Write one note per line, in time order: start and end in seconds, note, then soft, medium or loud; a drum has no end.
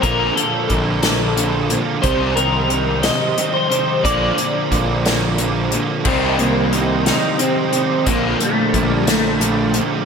0.01 0.29 A#1 medium
0.01 0.33 A#2 medium
0.01 0.33 D3 medium
0.01 0.36 D3 medium
0.01 0.36 F3 medium
0.01 0.34 A#3 medium
0.01 0.34 A#4 medium
0.01 kick medium
0.01 closed hi-hat medium
0.05 0.35 A#3 medium
0.05 0.35 D4 medium
0.34 0.66 A#2 medium
0.34 0.66 D3 medium
0.34 0.69 D3 medium
0.34 0.69 F3 medium
0.34 0.70 A#3 medium
0.34 0.70 D4 medium
0.34 1.01 A4 medium
0.34 closed hi-hat medium
0.68 1.75 A#1 medium
0.68 0.99 A#2 medium
0.68 1.00 D3 medium
0.68 1.03 D3 medium
0.68 1.04 F3 medium
0.68 1.04 A#3 medium
0.68 1.04 D4 medium
0.68 kick medium
0.68 closed hi-hat soft
1.02 1.33 A#2 medium
1.02 1.33 D3 medium
1.02 1.38 A#3 medium
1.02 1.38 D4 medium
1.02 1.74 A4 medium
1.02 snare medium
1.02 closed hi-hat medium
1.06 1.37 D3 medium
1.06 1.37 F3 medium
1.36 1.67 A#2 medium
1.36 1.67 D3 medium
1.36 1.71 D3 medium
1.36 1.71 F3 medium
1.36 1.71 A#3 medium
1.36 1.70 D4 medium
1.36 closed hi-hat medium
1.70 2.00 A#2 medium
1.70 2.00 D3 medium
1.70 2.03 D3 medium
1.70 2.04 F3 medium
1.70 2.04 A#3 medium
1.70 2.04 D4 medium
1.70 closed hi-hat medium
2.02 3.09 C2 medium
2.02 2.34 C3 medium
2.02 2.37 C3 medium
2.02 2.34 D#3 medium
2.02 2.35 G3 medium
2.02 2.37 G3 medium
2.02 2.36 C4 medium
2.02 2.36 D#4 medium
2.02 2.34 C5 medium
2.02 kick medium
2.02 closed hi-hat medium
2.35 2.67 C3 medium
2.35 2.70 C3 medium
2.35 2.67 D#3 medium
2.35 2.70 G3 medium
2.35 2.71 C4 medium
2.35 2.71 D#4 medium
2.35 3.02 A#4 medium
2.35 closed hi-hat medium
2.69 3.00 C3 medium
2.69 3.05 C3 medium
2.69 3.01 D#3 medium
2.69 3.05 G3 medium
2.69 3.04 C4 medium
2.69 3.04 D#4 medium
2.69 closed hi-hat soft
3.03 3.34 C3 medium
3.03 3.38 C3 medium
3.03 3.34 D#3 medium
3.03 3.38 G3 medium
3.03 3.38 C4 medium
3.03 3.38 D#4 medium
3.03 3.50 D#5 medium
3.03 snare medium
3.03 closed hi-hat medium
3.37 3.68 C3 medium
3.37 3.72 C3 medium
3.37 3.68 D#3 medium
3.37 3.72 G3 medium
3.37 3.72 C4 medium
3.37 3.71 D#4 medium
3.37 closed hi-hat medium
3.54 3.68 C5 medium
3.70 4.01 C3 medium
3.70 4.01 D#3 medium
3.70 4.05 G3 medium
3.70 4.06 D#4 medium
3.70 4.02 C5 medium
3.70 closed hi-hat medium
3.74 4.05 C3 medium
3.74 4.06 C4 medium
4.03 4.31 A#1 medium
4.03 4.36 A#2 medium
4.03 4.36 D3 medium
4.03 4.38 D3 medium
4.03 4.38 F3 medium
4.03 4.36 A#3 medium
4.03 4.37 A#3 medium
4.03 4.37 D4 medium
4.03 5.35 D5 medium
4.03 kick medium
4.03 closed hi-hat medium
4.38 4.69 A#2 medium
4.38 4.69 D3 medium
4.38 4.71 D3 medium
4.38 4.71 F3 medium
4.38 4.72 A#3 medium
4.38 4.72 D4 medium
4.38 closed hi-hat medium
4.71 5.76 A#1 medium
4.71 5.02 A#2 medium
4.71 5.02 D3 medium
4.71 5.06 D3 medium
4.71 5.06 F3 medium
4.71 5.05 A#3 medium
4.71 5.05 D4 medium
4.71 kick medium
4.71 closed hi-hat soft
5.05 5.36 A#2 medium
5.05 5.36 D3 medium
5.05 5.40 D3 medium
5.05 5.40 F3 medium
5.05 5.40 A#3 medium
5.05 5.39 D4 medium
5.05 snare medium
5.05 closed hi-hat medium
5.38 5.69 A#2 medium
5.38 5.69 D3 medium
5.38 5.73 D3 medium
5.38 5.73 F3 medium
5.38 5.73 A#3 medium
5.38 5.72 D4 medium
5.38 closed hi-hat medium
5.72 6.03 A#2 soft
5.72 6.03 D3 medium
5.72 6.07 D3 medium
5.72 6.07 F3 medium
5.72 6.07 A#3 medium
5.72 6.06 D4 medium
5.72 closed hi-hat medium
6.05 7.11 C2 medium
6.05 6.37 C3 medium
6.05 6.41 C3 medium
6.05 6.37 D#3 medium
6.05 6.38 G3 medium
6.05 6.41 G3 medium
6.05 6.37 C4 medium
6.05 6.41 C4 medium
6.05 8.05 G4 medium
6.05 8.05 C5 medium
6.05 8.05 D#5 soft
6.05 10.05 G5 medium
6.05 kick medium
6.05 crash medium
6.09 6.41 D#4 medium
6.38 6.69 C3 medium
6.38 6.70 D#3 medium
6.38 7.09 A#3 medium
6.38 closed hi-hat soft
6.42 6.73 C3 medium
6.42 6.74 G3 medium
6.42 6.74 C4 medium
6.42 6.74 D#4 medium
6.72 7.03 C3 medium
6.72 7.07 C3 medium
6.72 7.03 D#3 medium
6.72 7.08 G3 medium
6.72 7.08 C4 medium
6.72 7.07 D#4 medium
6.72 closed hi-hat soft
7.05 7.36 C3 medium
7.05 7.36 D#3 medium
7.05 7.40 D#4 loud
7.05 7.41 D#4 medium
7.05 snare medium
7.05 closed hi-hat medium
7.09 7.40 C3 medium
7.09 7.40 G3 medium
7.09 7.41 C4 medium
7.38 7.70 C3 medium
7.38 7.74 C3 medium
7.38 7.70 D#3 medium
7.38 7.74 G3 medium
7.38 8.09 C4 medium
7.38 7.74 C4 medium
7.38 7.74 D#4 medium
7.38 closed hi-hat medium
7.72 8.03 C3 medium
7.72 8.07 C3 medium
7.72 8.03 D#3 medium
7.72 8.07 G3 medium
7.72 8.08 C4 medium
7.72 8.08 D#4 medium
7.72 closed hi-hat medium
8.06 8.33 A#1 medium
8.06 8.38 A#2 medium
8.06 8.39 D3 medium
8.06 8.40 D3 medium
8.06 8.40 F3 medium
8.06 8.39 A#3 medium
8.06 8.40 A#3 medium
8.06 8.40 D4 medium
8.06 10.05 A4 medium
8.06 10.05 D5 medium
8.06 10.05 F5 medium
8.06 kick medium
8.06 closed hi-hat medium
8.40 8.71 A#2 medium
8.40 8.71 D3 medium
8.40 8.74 D3 medium
8.40 8.74 F3 medium
8.40 8.94 A3 medium
8.40 8.75 A#3 medium
8.40 8.75 D4 medium
8.40 closed hi-hat medium
8.73 9.79 A#1 medium
8.73 9.05 A#2 medium
8.73 9.05 D3 medium
8.73 9.07 D3 medium
8.73 9.07 F3 medium
8.73 9.06 A#3 medium
8.73 9.06 D4 medium
8.73 kick medium
8.73 closed hi-hat medium
8.94 9.08 G3 medium
9.07 9.38 A#2 medium
9.07 9.40 D3 medium
9.07 9.39 D3 medium
9.07 9.41 F3 medium
9.07 9.80 A3 medium
9.07 9.42 A#3 medium
9.07 9.42 D4 medium
9.07 snare loud
9.07 closed hi-hat medium
9.40 9.71 A#2 medium
9.40 9.72 D3 medium
9.40 9.75 D3 medium
9.40 9.75 F3 medium
9.40 9.75 A#3 medium
9.40 9.75 D4 medium
9.40 closed hi-hat medium
9.74 10.05 A#2 medium
9.74 10.05 D3 medium
9.74 10.05 F3 medium
9.74 10.05 A#3 medium
9.74 10.05 D4 medium
9.74 closed hi-hat medium